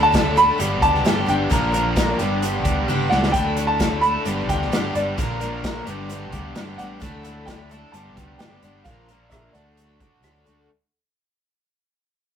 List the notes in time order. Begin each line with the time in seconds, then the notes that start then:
Already playing: D2 D3 A3 D4 E4 A4
0.03 A5
0.12 D3 E3 A3 D4 A4, kick, snare, closed hi-hat
0.36 A3 D4 E4 A4 B5, closed hi-hat
0.58 G1 G2 D3 G3 B3 D4 G4, closed hi-hat
0.81 D2 G3 B3 D4 G4 A5, kick, closed hi-hat
0.95 snare
1.04 G1 G2 D3 G3 B3 D4 G4, snare, closed hi-hat
1.26 G1 G3 B3 D4 G4 G5, closed hi-hat
1.50 A#1 A#2 D3 F3 A#3 D4 A#4, kick, closed hi-hat
1.72 A#2 D3 F3 A#3 D4 A#4, closed hi-hat
1.96 A#2 D3 F3 A#3 D4 A#4, kick, snare, closed hi-hat
2.19 G1 G2 D3 G3 B3 D4 G4, closed hi-hat
2.42 G3 B3 D4 G4, closed hi-hat
2.64 D2 G3 B3 D4 G4, kick, closed hi-hat
2.88 G1 G2 D3 G3 B3 D4 G4, high tom
3.09 C#2 G3 B3 D4 G4 F#5, snare
3.23 snare
3.32 D2 D3 E3 A3 D4 E4 A4 G5, kick, closed hi-hat
3.56 D3 A3 D4 E4 A4, closed hi-hat
3.67 A5
3.79 D3 E3 A3 D4 A4, kick, snare, closed hi-hat
4.01 D4 E4 A4 B5, closed hi-hat
4.05 A3
4.25 G1 G2 D3 G3 B3 D4 G4, closed hi-hat
4.49 D2 G3 B3 D4 G4 G5, kick, snare, closed hi-hat
4.62 snare
4.72 G1 G2 D3 G3 B3 D4 G4, snare, closed hi-hat
4.94 G1 G3 B3 D4 G4 D5, closed hi-hat
5.17 A#1 A#2 D3 F3 A#3 D4 A#4, kick, closed hi-hat
5.40 A#2 D3 F3 A#3 D4 A#4, closed hi-hat
5.64 A#2 D3 F3 A#3 D4 A#4, kick, snare, closed hi-hat
5.86 G1 G2 D3 G3 B3 D4 G4, closed hi-hat
6.09 G3 B3 D4 G4, closed hi-hat
6.32 D2 G3 B3 D4 G4, kick, closed hi-hat
6.55 G1 G2 D3 G3 B3 D4 G4, snare, closed hi-hat
6.78 A1 G3 B3 D4 G4 F#5, closed hi-hat
7.00 D2 D3 E3 A3 D4 E4 A4, kick, closed hi-hat
7.23 D3 A3 D4 E4 A4, closed hi-hat
7.46 D3 E3 A3 D4 A4 G5, kick, snare, closed hi-hat
7.69 A3 D4 E4 A4, closed hi-hat
7.92 G1 G2 D3 G3 B3 D4 G4 A5, closed hi-hat
8.17 D2 G3 B3 D4 G4, kick, closed hi-hat
8.38 G1 G2 D3 G3 B3 D4 G4 G5, snare, closed hi-hat
8.62 G1 G3 B3 D4 G4, closed hi-hat
8.84 A#1 A#2 D3 F3 A#3 D4 A#4 F5, kick, closed hi-hat
8.88 F4
9.08 A#2 F3 A#3 D4 F4 A#4, closed hi-hat
9.30 A#2 D3 F3 A#3 D4 A#4 E5, kick, cross-stick, closed hi-hat
9.52 D2 D4 F#4 A4 D5, closed hi-hat
9.56 D3 A3
9.77 F#3 A3 D4 A4, closed hi-hat
10.00 A1 A3 D4 F#4, kick, closed hi-hat
10.22 D2 D3 F#3 A3 D4 F#4 A4, cross-stick, closed hi-hat
10.45 D2 A3 D4 F#4 A4, closed hi-hat